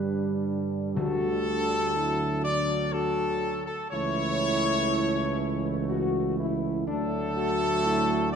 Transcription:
Already playing: G2 D3 G3 D4 B4
0.95 D2 D3 F#4 A4
1.95 F#3 E4
2.43 D4 D5
2.92 F#4 A4
3.66 A4
3.90 C#2 E3 A3 E4 C#5
5.89 F#4
6.39 E4
6.86 D2 F#3 A3 D4 A4
7.35 F#4
7.85 E4

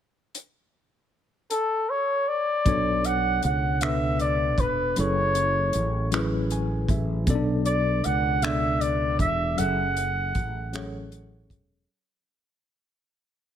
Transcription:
0.35 closed hi-hat
1.50 A4, closed hi-hat
1.90 C#5
2.28 D5
2.65 B1 B2 B3 D4 A4 C#5, kick, closed hi-hat
3.04 F#5, closed hi-hat
3.42 C#2 F#5, closed hi-hat
3.81 B2 B3 D4 A4 B4 E5, finger snap, closed hi-hat
4.19 D5, closed hi-hat
4.58 E1 B4, kick, closed hi-hat
4.96 F#1 F#3 C#4 E4 G#4 A4 C#5, closed hi-hat
5.35 closed hi-hat
5.73 A1, closed hi-hat
6.11 F#3 C#4 E4 G#4 B4, finger snap, closed hi-hat
6.50 G#5, closed hi-hat
6.88 A1 E5, kick, closed hi-hat
7.27 B1 B2 B3 C#4 A4 D5, kick, closed hi-hat
7.35 D4
7.65 D5, closed hi-hat
8.04 C#2 F#5, closed hi-hat
8.42 B2 B3 D4 A4 D5 E5, finger snap, closed hi-hat
8.81 D5, closed hi-hat
9.19 E1 E5, kick, closed hi-hat
9.57 F#1 F#3 C#4 G#4 A4 E5 F#5, closed hi-hat
9.96 closed hi-hat
10.35 A1, kick, closed hi-hat
10.73 F#3 C#4 G#4 A4 C#5, finger snap, closed hi-hat
11.12 closed hi-hat
11.50 E1, kick, closed hi-hat

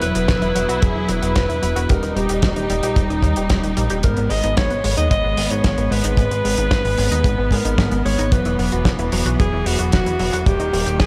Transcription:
Already playing: F#3 B3 E4
0.02 E1 F#3 B4, closed hi-hat
0.15 E1 F#4, closed hi-hat
0.28 E1 F#3, kick, snare, closed hi-hat
0.42 E1 E4, closed hi-hat
0.55 E1 F#3, closed hi-hat
0.69 B1 F#4, closed hi-hat
0.82 E1 F#3 G#4, kick, closed hi-hat
0.96 E1 E4
1.09 E1 F#3 B4, closed hi-hat
1.22 E1 F#4, closed hi-hat
1.36 E1 F#3, kick, snare, closed hi-hat
1.49 E1 E4, closed hi-hat
1.62 E1 F#3, closed hi-hat
1.76 E1 F#4, closed hi-hat
1.89 D#1 G3 D#4 A#4, kick, closed hi-hat
2.03 D#1 D#4, closed hi-hat
2.16 D#1 G3 G4, closed hi-hat
2.29 D#1 G4, closed hi-hat
2.42 D#1 G3 G4, kick, snare, closed hi-hat
2.56 D#1 D#4, closed hi-hat
2.70 D#1 G3, closed hi-hat
2.83 A#1 G4, closed hi-hat
2.96 D#1 G3, kick, closed hi-hat
3.10 D#1 D#4, closed hi-hat
3.23 D#2 G3, kick, closed hi-hat
3.36 D#1 G4, closed hi-hat
3.50 D#1 G3, kick, snare, closed hi-hat
3.64 D#1 D#4, closed hi-hat
3.77 A#1 G3, closed hi-hat
3.90 D#1 G4, closed hi-hat
4.03 G#1 G#3 B3 A#4, kick, closed hi-hat
4.17 G#1 B3, closed hi-hat
4.30 G#1 G#3 D#5, open hi-hat
4.44 G#1 D#4, closed hi-hat
4.57 G#1 G#3 C#5, kick, snare, closed hi-hat
4.70 G#1 B3, closed hi-hat
4.84 G#1 G#3, open hi-hat
4.97 D#2 D#4 D#5, closed hi-hat
5.11 G#1 G#3 D#5, kick, closed hi-hat
5.24 G#1 B3
5.37 G#1 G#3, open hi-hat
5.50 G#1 D#4 C#5, closed hi-hat
5.64 G#1 G#3, kick, snare, closed hi-hat
5.78 G#1 B3, closed hi-hat
5.91 G#1 G#3 B4, open hi-hat
6.04 G#1 D#4, closed hi-hat
6.17 G#1 G#3, kick, closed hi-hat
6.31 G#1 B3, closed hi-hat
6.45 G#1 G#3, open hi-hat
6.58 G#1 D#4, closed hi-hat
6.71 G#1 G#3, kick, snare, closed hi-hat
6.85 G#1 B3, open hi-hat
6.97 G#1 G#3, open hi-hat
7.12 D#2 D#4, closed hi-hat
7.24 G#1 G#3, kick, closed hi-hat
7.38 G#1 B3
7.51 G#1 G#3 A#4, kick, open hi-hat
7.65 G#1 D#4, closed hi-hat
7.78 G#1 G#3, kick, snare, closed hi-hat
7.91 G#1 B3, closed hi-hat
8.05 G#1 G#3 C#5, open hi-hat
8.19 G#1 D#4, closed hi-hat
8.32 E1 E3 F#3 B4, kick, closed hi-hat
8.45 E1 E4, closed hi-hat
8.59 E1 F#3 B4, open hi-hat
8.72 E1 F#4, closed hi-hat
8.85 F#3, kick, snare, closed hi-hat
8.99 E1 E4, closed hi-hat
9.12 E1 F#3, open hi-hat
9.26 B1 F#4, closed hi-hat
9.39 E1 F#3 G#4, kick, closed hi-hat
9.53 E1 E4
9.66 E1 F#3 F#4, open hi-hat
9.79 E1 F#4, closed hi-hat
9.92 E1 F#3 F#4, kick, snare, closed hi-hat
10.06 E1 E4, closed hi-hat
10.19 E1 F#3, open hi-hat
10.33 E1 F#4, closed hi-hat
10.46 D#1 D#3 G3 A#3 G4, kick, closed hi-hat
10.60 D#1 D#4, closed hi-hat
10.73 D#1 G3, open hi-hat
10.86 D#1 G4, closed hi-hat
11.00 D#1 G3 G#4, kick, snare, closed hi-hat

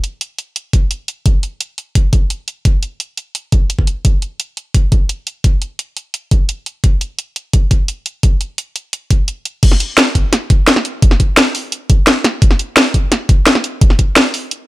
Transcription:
0.04 closed hi-hat
0.21 closed hi-hat
0.38 closed hi-hat
0.56 closed hi-hat
0.73 kick, closed hi-hat
0.91 closed hi-hat
1.08 closed hi-hat
1.26 kick, closed hi-hat
1.43 closed hi-hat
1.61 closed hi-hat
1.78 closed hi-hat
1.95 kick, closed hi-hat
2.13 kick, closed hi-hat
2.30 closed hi-hat
2.48 closed hi-hat
2.65 kick, closed hi-hat
2.83 closed hi-hat
3.00 closed hi-hat
3.17 closed hi-hat
3.35 closed hi-hat
3.52 kick, closed hi-hat
3.70 closed hi-hat
3.79 kick
3.87 closed hi-hat
4.05 kick, closed hi-hat
4.22 closed hi-hat
4.40 closed hi-hat
4.57 closed hi-hat
4.74 kick, closed hi-hat
4.92 kick, closed hi-hat
5.09 closed hi-hat
5.27 closed hi-hat
5.44 kick, closed hi-hat
5.62 closed hi-hat
5.79 closed hi-hat
5.97 closed hi-hat
6.14 closed hi-hat
6.31 kick, closed hi-hat
6.49 closed hi-hat
6.66 closed hi-hat
6.84 kick, closed hi-hat
7.01 closed hi-hat
7.19 closed hi-hat
7.36 closed hi-hat
7.53 kick, closed hi-hat
7.71 kick, closed hi-hat
7.88 closed hi-hat
8.06 closed hi-hat
8.23 kick, closed hi-hat
8.41 closed hi-hat
8.58 closed hi-hat
8.76 closed hi-hat
8.93 closed hi-hat
9.11 kick, closed hi-hat
9.28 closed hi-hat
9.45 closed hi-hat
9.63 kick, closed hi-hat, crash
9.72 snare
9.80 closed hi-hat
9.98 snare, closed hi-hat
10.15 kick, closed hi-hat
10.33 snare, closed hi-hat
10.50 kick, closed hi-hat
10.68 snare, closed hi-hat
10.76 snare
10.85 closed hi-hat
11.02 kick, closed hi-hat
11.11 snare
11.20 kick, closed hi-hat
11.37 snare, closed hi-hat
11.55 open hi-hat
11.72 closed hi-hat
11.90 kick, closed hi-hat
12.07 snare, closed hi-hat
12.24 snare, closed hi-hat
12.42 kick, closed hi-hat
12.51 snare
12.59 closed hi-hat
12.77 snare, closed hi-hat
12.94 kick, closed hi-hat
13.12 snare, closed hi-hat
13.29 kick, closed hi-hat
13.47 snare, closed hi-hat
13.55 snare
13.64 closed hi-hat
13.81 kick, closed hi-hat
13.90 snare
13.99 kick, closed hi-hat
14.16 snare, closed hi-hat
14.34 open hi-hat
14.51 closed hi-hat

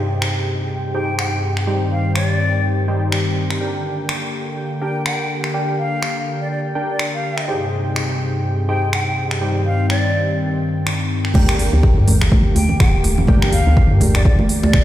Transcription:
Already playing: G2 C3 D#4 G4 G#4 C5 G5
0.22 finger snap
0.95 D#4 G4 G#4 C5 G5
1.19 G5, finger snap
1.57 finger snap
1.67 D#3 G3 C4 D#4 G4 C5 G5
1.91 F5
2.16 D5, finger snap
2.88 G3 D#4 G4 C5 G5
3.12 finger snap
3.50 finger snap
3.61 D3 A#3 D4 G4 A#4 G5
4.09 finger snap
4.82 D4 G4 A#4 G5
5.06 G5, finger snap
5.44 finger snap
5.54 D4 G4 A#4 G5
5.79 F5
6.03 finger snap
6.41 D5
6.51 D5
6.75 D4 G4 A#4 G5
6.90 D5
6.99 finger snap
7.14 F5
7.38 finger snap
7.48 G2 C3 D#4 G4 G#4 C5 G5
7.96 finger snap
8.69 D#4 G4 G#4 C5 G5
8.93 G5, finger snap
9.31 finger snap
9.41 D#3 G3 C4 D#4 G4 C5 G5
9.66 F5
9.90 D5, finger snap
10.87 finger snap
11.25 finger snap
11.34 G1 D3 A#3 D4 G4 A#4 G5, kick, crash, high conga, djembe tone
11.49 finger snap
11.59 open hi-hat, djembe tone
11.73 D2
11.83 kick, djembe tone
11.97 G2
12.07 G1, open hi-hat, high conga, djembe tone, low conga
12.21 finger snap, djembe slap
12.32 G1, kick, high conga, djembe tone
12.46 F1
12.55 G5, open hi-hat, djembe slap, high conga, djembe tone
12.69 low conga
12.80 D1 G5, finger snap, kick, djembe tone
13.04 open hi-hat, djembe slap, djembe tone, high conga
13.18 low conga
13.27 G1 D4 G4 A#4 G5, kick, high conga, djembe tone
13.42 finger snap
13.52 F5, open hi-hat, djembe tone
13.67 D2
13.77 kick, djembe tone
13.91 G2
14.00 G1, open hi-hat, djembe tone, high conga, low conga
14.15 D5, finger snap, djembe slap
14.25 G1 D5, kick, djembe tone
14.39 F1, high conga, low conga
14.49 open hi-hat, djembe tone
14.63 D5, djembe slap, high conga
14.73 D1, finger snap, kick, djembe tone

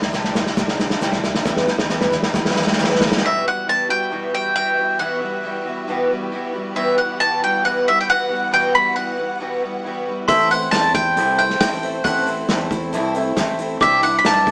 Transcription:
Already playing: G3 D4 E4 D5 G5 C6
0.02 snare, floor tom
0.13 C2 C3 E3 G3 D4 E4, snare, shaker
0.24 snare, floor tom
0.35 C2 G3 D4 E4, snare, floor tom, mid tom, shaker
0.46 snare, shaker
0.57 C2 E3 G3 D4 E4, kick, snare, floor tom, mid tom, shaker
0.68 snare, shaker
0.79 G3 D4 E4, snare, floor tom, shaker
0.90 snare, shaker
1.01 C2 C3 E3 G3 D4 E4, snare, shaker
1.12 snare, floor tom, shaker
1.24 G3 D4 E4, snare, floor tom, shaker
1.35 snare
1.45 E2 B2 E3 G3 B3 E4 B4 B5, kick, snare, floor tom, shaker
1.57 snare, floor tom, shaker
1.67 E3 G3 B3 E4, snare, shaker
1.79 snare, floor tom, shaker
1.89 E2 B2 E3 G3 B3 E4, snare, shaker
2.01 snare, floor tom, mid tom, shaker
2.11 E2 E3 G3 B3 E4, snare, floor tom, mid tom, shaker
2.23 snare, shaker
2.34 E2 E3 G3 B3 E4, kick, snare, floor tom, mid tom, shaker
2.45 snare
2.50 snare
2.56 E3 G3 B3 E4, snare, shaker
2.62 snare
2.67 snare
2.73 snare
2.78 E2 B2 E3 G3 B3 E4, snare, shaker
2.84 snare
2.90 snare, shaker
2.95 snare
2.99 E3 G3 B3 E4, kick, snare, floor tom, mid tom, shaker
3.06 snare
3.12 snare
3.17 snare
3.22 E2 B2 E3 G3 B3 E4 F#4 G4 B4 E5
3.44 E3 G3 B3 F#4 F#5
3.67 E3 G3 B3 F#4 A5
3.89 E3 G3 B3 F#4 G5
4.11 E2 B2 E3 G3 B3 F#4
4.33 E3 G3 B3 F#4 G5
4.55 E3 G3 B3 F#4 G5
4.77 E3 G3 B3 F#4
4.99 E2 B2 E3 G3 B3 F#4 F#5
5.21 E3 G3 B3 F#4
5.43 E3 G3 B3 F#4
5.66 E3 G3 B3 F#4
5.88 E2 B2 E3 G3 B3 F#4
6.10 E3 G3 B3 F#4
6.32 E3 G3 B3 F#4
6.53 E3 G3 B3 F#4
6.75 E2 B2 E3 G3 B3 F#4 E5 F#5
6.97 E3 G3 B3 F#4 F#5
7.20 E3 G3 B3 F#4 A5
7.42 E3 G3 B3 F#4 G5
7.64 E2 B2 E3 G3 B3 F#4 F#5
7.86 E3 G3 B3 F#4 E5
8.01 G5
8.08 E3 G3 B3 F#4 F#5
8.29 E3 G3 B3 F#4
8.51 E2 B2 E3 G3 B3 F#4 G5
8.73 E3 G3 B3 F#4 B5
8.96 E3 G3 B3 F#4 F#5
9.18 E3 G3 B3 F#4
9.40 E2 B2 E3 G3 B3 F#4
9.62 E3 G3 B3 F#4
9.84 E3 G3 B3 F#4
10.06 E3 G3 B3 F#4
10.28 A1 A2 E3 A3 C4 E4 A4 C5 E5 C6, kick, open hi-hat, shaker
10.50 A3 C4 E4 C5 E5 F#5, open hi-hat, shaker
10.71 E2 E3 A3 C4 E4 C5 D5 A5, snare, open hi-hat, shaker
10.94 A3 C4 E4 C5 E5 G5, kick, open hi-hat, shaker
11.17 C2 A2 E3 A3 C4 E4 C5 F#5, open hi-hat, shaker
11.38 A3 C4 E4 C5 E5 G5, open hi-hat, shaker
11.50 snare
11.60 A1 E3 A3 C4 E4 C5 E5 G5, kick, snare, open hi-hat, shaker
11.83 A3 C4 E4 C5 E5, open hi-hat
12.04 A1 A2 E3 A3 C4 E4 C5 E5 F#5, kick, open hi-hat, shaker
12.26 A3 C4 E4 C5 E5, open hi-hat, shaker
12.49 E2 E3 A3 C4 E4 C5 E5, snare, open hi-hat, shaker
12.70 A3 C4 E4 C5 E5, kick, open hi-hat, shaker
12.93 C2 A2 E3 A3 C4 E4 C5 E5, open hi-hat, shaker
13.15 A3 C4 E4 C5 E5, open hi-hat, shaker
13.37 A1 E3 A3 C4 E4 C5 E5, kick, snare, open hi-hat, shaker
13.58 A3 C4 E4 C5 G5, open hi-hat, shaker
13.80 C2 C3 E3 G3 C4 D4 E4 G4 C5 D5 E5 D6, kick, open hi-hat, shaker
14.02 G3 D4 E4 C5 E5 F#5, open hi-hat, shaker
14.19 B5
14.24 G2 E3 G3 D4 E4 C5 E5 A5, snare, open hi-hat, shaker
14.46 G3 D4 E4 C5, kick, open hi-hat, shaker

